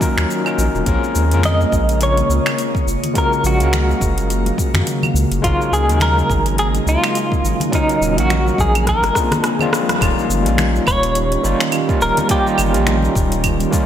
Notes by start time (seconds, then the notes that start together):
Already playing: D#3 F#3 A#3 C#4 A#4
0.00 F#3 C#4 D#4 F4 A#4, kick, cabasa
0.17 D#2, finger snap, cabasa
0.30 cabasa
0.44 F#3 C#4 D#4 F4 A#4, cabasa, claves
0.58 A#1, cabasa
0.74 D#1, cabasa
0.85 A#1 C#3 G#3 C4 C#4 F4 A#4, kick, closed hi-hat, cabasa
1.04 cabasa
1.15 D#2, cabasa
1.28 F2 G#3 A#3 C#4, closed hi-hat, cabasa
1.33 F4 A#4
1.43 D#5, finger snap, closed hi-hat, high conga, low conga, cabasa
1.61 high conga, cabasa
1.72 A#1, kick, cabasa
1.89 closed hi-hat, cabasa
2.01 C#5, closed hi-hat, cabasa
2.17 closed hi-hat, high conga, cabasa
2.29 C#2, cabasa
2.46 finger snap, closed hi-hat, cabasa, claves
2.58 closed hi-hat, cabasa
2.75 kick, cabasa
2.87 F#1 C#3 F#3 F5, cabasa
3.03 closed hi-hat, low conga, cabasa
3.13 G#3 C#4 F4 F#4 A#4, kick, closed hi-hat, cabasa
3.18 A#4
3.33 cabasa
3.44 A#1 F#4, cabasa
3.57 C#2 G#3 C#4 F5, closed hi-hat
3.61 F#4 A#4, cabasa
3.73 finger snap, closed hi-hat, high conga, low conga, cabasa
3.89 high conga, cabasa
4.01 F#1, kick, cabasa
4.18 closed hi-hat, cabasa
4.30 closed hi-hat, cabasa
4.46 closed hi-hat, high conga, cabasa
4.58 kick, cabasa
4.74 F#2, finger snap, closed hi-hat, low conga, cabasa
4.87 closed hi-hat, cabasa
5.03 low conga, cabasa, claves
5.14 C#2, cabasa
5.31 F#1, closed hi-hat, cabasa
5.42 G#1 F#3 G#3 A#3 C#4 D#4 F4 F#4 A#4, kick, closed hi-hat, cabasa
5.61 cabasa
5.72 C#2 G#4, cabasa
5.85 D#2 G#3 C#4 D#4
5.89 F#3 A#4, closed hi-hat, cabasa
6.00 A#4, finger snap, closed hi-hat, high conga, low conga, cabasa
6.18 high conga, cabasa
6.29 G#1, kick, cabasa
6.46 closed hi-hat, cabasa
6.58 G#4, closed hi-hat, cabasa
6.75 closed hi-hat, high conga, cabasa
6.86 C#2 F4, cabasa
7.04 finger snap, closed hi-hat, cabasa, claves
7.15 closed hi-hat, cabasa
7.32 kick, cabasa
7.43 G#1, cabasa
7.60 closed hi-hat, low conga, cabasa
7.71 D#3 F#3 C#4 D#4 F4 A#4, kick, closed hi-hat, cabasa
7.75 D#4
7.89 closed hi-hat, cabasa
8.01 D#1, cabasa
8.14 A#1 F#3 C#4 D#4
8.18 F#4 A#4 F5, closed hi-hat, cabasa
8.30 finger snap, closed hi-hat, high conga, low conga, cabasa
8.47 high conga, cabasa
8.58 A#1 G#4, kick, cabasa
8.75 closed hi-hat, cabasa, claves
8.87 D3 F3 G#3 A#3 F4 A#4, kick, cross-stick, closed hi-hat, cabasa
9.03 G#1, cross-stick, closed hi-hat, high conga, cabasa
9.13 G#3 A#3 C4 D4 F4, kick, cross-stick, cabasa
9.31 cross-stick, closed hi-hat, low conga, cabasa
9.44 G#4, cross-stick, closed hi-hat, cabasa
9.59 G#3 A#3 C4 D4 F4, low conga, cabasa, claves
9.73 cross-stick, cabasa
9.89 cross-stick, closed hi-hat, high conga, cabasa
9.99 D#1 D#3 G3 A#3 C#4 D#4 F4 G4, kick, closed hi-hat, cabasa, claves
10.19 cabasa
10.29 G1, cabasa
10.42 A#1 G3 A#3 C#4
10.46 D#4 F4, closed hi-hat, cabasa
10.58 finger snap, closed hi-hat, high conga, low conga, cabasa
10.75 high conga, cabasa
10.87 D#1 C#5, kick, cabasa, claves
11.03 closed hi-hat, cabasa
11.15 closed hi-hat, cabasa
11.32 closed hi-hat, high conga, cabasa
11.42 G1 G3 A#3 C#4 D#4 F4, cabasa
11.60 finger snap, closed hi-hat, cabasa
11.72 closed hi-hat, cabasa, claves
11.87 G3 A#3 C#4 D#4 F4, kick, cabasa
12.01 D#1 A#4, cabasa
12.17 closed hi-hat, high conga, low conga, cabasa
12.28 G3 A#3 C#4 D#4 F4 G4, kick, closed hi-hat, cabasa
12.47 cabasa
12.58 G1, cabasa, claves
12.71 G3 A#3 C#4, closed hi-hat
12.75 A#1 D#4 F4, cabasa
12.87 finger snap, closed hi-hat, high conga, low conga, cabasa
13.03 high conga, cabasa
13.15 D#1, kick, cabasa
13.32 closed hi-hat, cabasa
13.44 kick, closed hi-hat, cabasa, claves
13.60 closed hi-hat, high conga, cabasa
13.70 G3 A#3 C#4 D#4 F4, kick, cabasa